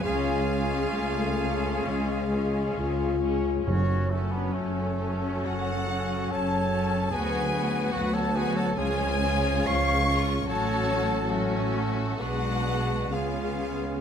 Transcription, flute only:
X:1
M:4/4
L:1/16
Q:1/4=67
K:F#m
V:1 name="Flute"
G12- G2 z2 | F2 C D C4 A4 c4 | B4 B c B c c4 ^e3 z | c4 C4 B4 G4 |]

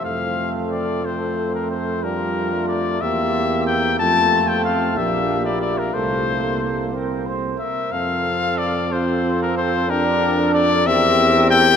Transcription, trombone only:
X:1
M:6/8
L:1/16
Q:3/8=61
K:F
V:1 name="Trombone"
A,6 A,6 | G,3 A,3 B,6 | A,6 B,6 | A,3 B,3 C4 z2 |
C6 C6 | D6 C6 |]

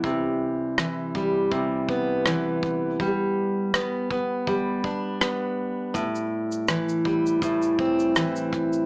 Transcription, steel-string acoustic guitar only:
X:1
M:4/4
L:1/8
Q:"Swing 16ths" 1/4=81
K:C
V:1 name="Steel-string acoustic guitar" clef=bass
C,2 E, G, C, B, E,2 | G,2 B, B, G, D B,2 | A,,2 E, G, A,, C E,2 |]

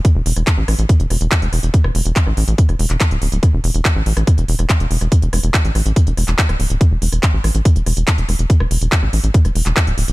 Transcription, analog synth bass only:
X:1
M:4/4
L:1/16
Q:1/4=142
K:none
V:1 name="Analog synth bass" clef=bass
z E,,, E,,, E,,, z A,,, A,,, A,,, z E,,, E,,, E,,, z E,,, E,,, E,,, | z E,,, E,,, E,,, z A,,, A,,, A,,, z E,,, E,,, E,,, z D,,, D,,, D,,, | z E,,, E,,, E,,, z A,,, A,,, A,,, z E,,, E,,, E,,, z E,,, E,,, E,,, | z E,,, E,,, E,,, z A,,, A,,, A,,, z E,,, E,,, E,,, z D,,, D,,, D,,, |
z E,,, E,,, E,,, z A,,, A,,, A,,, z E,,, E,,, E,,, z E,,, E,,, E,,, | z E,,, E,,, E,,, z A,,, A,,, A,,, z E,,, E,,, E,,, z D,,, D,,, D,,, |]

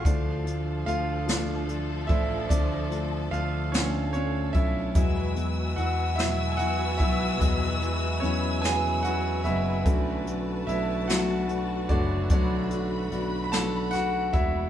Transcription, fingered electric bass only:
X:1
M:6/8
L:1/8
Q:3/8=49
K:Dlyd
V:1 name="Fingered electric bass" clef=bass
D,,2 D,,3 A,,, | D,,2 D,,3 B,,, | E,,2 E,,3 B,,, | E,,2 E,,3 F,,, |
B,,,2 B,,,3 F,,, | B,,,2 B,,,3 E,,, |]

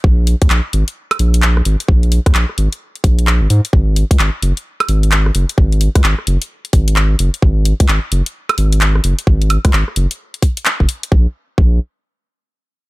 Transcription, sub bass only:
X:1
M:4/4
L:1/16
Q:"Swing 16ths" 1/4=130
K:Abmix
V:1 name="Sub bass" clef=bass
B,,,3 E,, B,,, z A,,, z3 B,,,4 A,,, z | B,,,3 E,, B,,, z A,,, z3 B,,,3 A,,, A,, z | A,,,3 D,, A,,, z G,,, z3 A,,,4 G,,, z | A,,,3 D,, A,,, z G,,, z3 A,,,4 G,,, z |
A,,,3 D,, A,,, z G,,, z3 A,,,4 G,,, z | A,,,3 D,, A,,, z G,,, z6 G,,, z2 | B,,, z3 B,,,2 z8 z2 |]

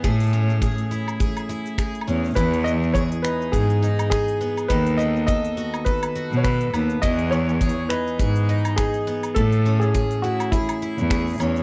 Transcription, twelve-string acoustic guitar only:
X:1
M:4/4
L:1/8
Q:"Swing 16ths" 1/4=103
K:E
V:1 name="Twelve-string acoustic guitar"
[A,G] C G E G E G C | [E,G] B, G D G D G B, | [D,A] B, A F A F A B, | [E,G] B, G D G D G B, |
A, C G E G E G C |]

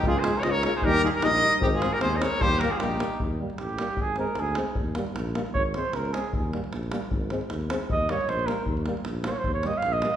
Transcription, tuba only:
X:1
M:2/4
L:1/8
Q:"Swing 16ths" 1/4=153
K:Ebmix
V:1 name="Tuba" clef=bass
D,,2 D,,2 | E,,2 B,,,2 | A,,,2 E,,2 | E,,2 B,,,2 |
E,,2 =A,,,2 | A,,,2 =D,,2 | E,,2 B,,,2 | A,,,2 D,,2 |
E,,2 B,,,2 | A,,,2 E,,2 | E,,2 B,,,2 | E,,2 B,,,2 |
E,,2 B,,,2 |]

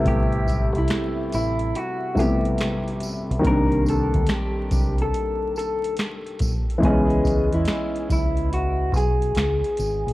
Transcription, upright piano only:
X:1
M:4/4
L:1/8
Q:"Swing 16ths" 1/4=71
K:Ador
V:1 name="Upright piano"
[C,G,A,B,E]4- [C,G,A,B,E] [C,G,A,B,E]3 | [_E,G,_B,CD]8 | [E,^G,B,^C^d]8 |]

